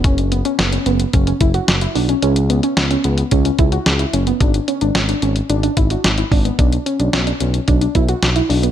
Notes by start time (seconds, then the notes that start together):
0.04 F#1 C#4, kick, closed hi-hat
0.18 closed hi-hat
0.32 B3, closed hi-hat
0.45 C#4, closed hi-hat
0.59 F#1 B3, snare, closed hi-hat
0.73 C#4, closed hi-hat
0.86 F#1 B3, closed hi-hat
1.00 closed hi-hat
1.13 F#1 C#4, kick, closed hi-hat
1.27 C#4, closed hi-hat
1.41 F#1 E4, kick, closed hi-hat
1.54 F#4, closed hi-hat
1.68 F#1, snare, closed hi-hat
1.81 E4, closed hi-hat
1.95 B1 D4, open hi-hat
2.09 C#4, closed hi-hat
2.22 C#2 C#4, closed hi-hat
2.36 closed hi-hat
2.50 B3, closed hi-hat
2.63 C#4, closed hi-hat
2.77 C#2 B3, snare, closed hi-hat
2.91 C#4, closed hi-hat
3.04 C#2 B3, closed hi-hat
3.18 closed hi-hat
3.31 C#2 C#4, kick, closed hi-hat
3.45 C#4, closed hi-hat
3.59 C#2 E4, kick, closed hi-hat
3.72 F#4, closed hi-hat
3.86 C#2, snare, closed hi-hat
3.99 E4, closed hi-hat
4.13 F#1 C#4, closed hi-hat
4.27 B3, closed hi-hat
4.41 G#1 D4, kick, closed hi-hat
4.54 closed hi-hat
4.68 C#4, closed hi-hat
4.81 G#1 D4, closed hi-hat
4.95 G#1 C#4, snare, closed hi-hat
5.09 D4, closed hi-hat
5.22 G#1 C#4, closed hi-hat
5.36 closed hi-hat
5.50 G#1 D4, closed hi-hat
5.63 D4, closed hi-hat
5.77 G#1 E4, kick, closed hi-hat
5.90 F#4, closed hi-hat
6.04 G#1, snare, closed hi-hat
6.18 E4, closed hi-hat
6.32 G#1 D4, kick, open hi-hat
6.45 B3, closed hi-hat
6.59 B1 D4, kick, closed hi-hat
6.72 closed hi-hat
6.86 C#4, closed hi-hat
7.00 B1 D4, closed hi-hat
7.13 B1 C#4, snare, closed hi-hat
7.27 D4, closed hi-hat
7.40 B1 C#4, closed hi-hat
7.54 closed hi-hat
7.68 B1 D4, kick, closed hi-hat
7.81 D4, closed hi-hat
7.95 B1 E4, kick, closed hi-hat
8.09 F#4, closed hi-hat
8.23 B1, snare, closed hi-hat
8.36 E4, closed hi-hat
8.50 B1 D4, open hi-hat
8.63 B3, closed hi-hat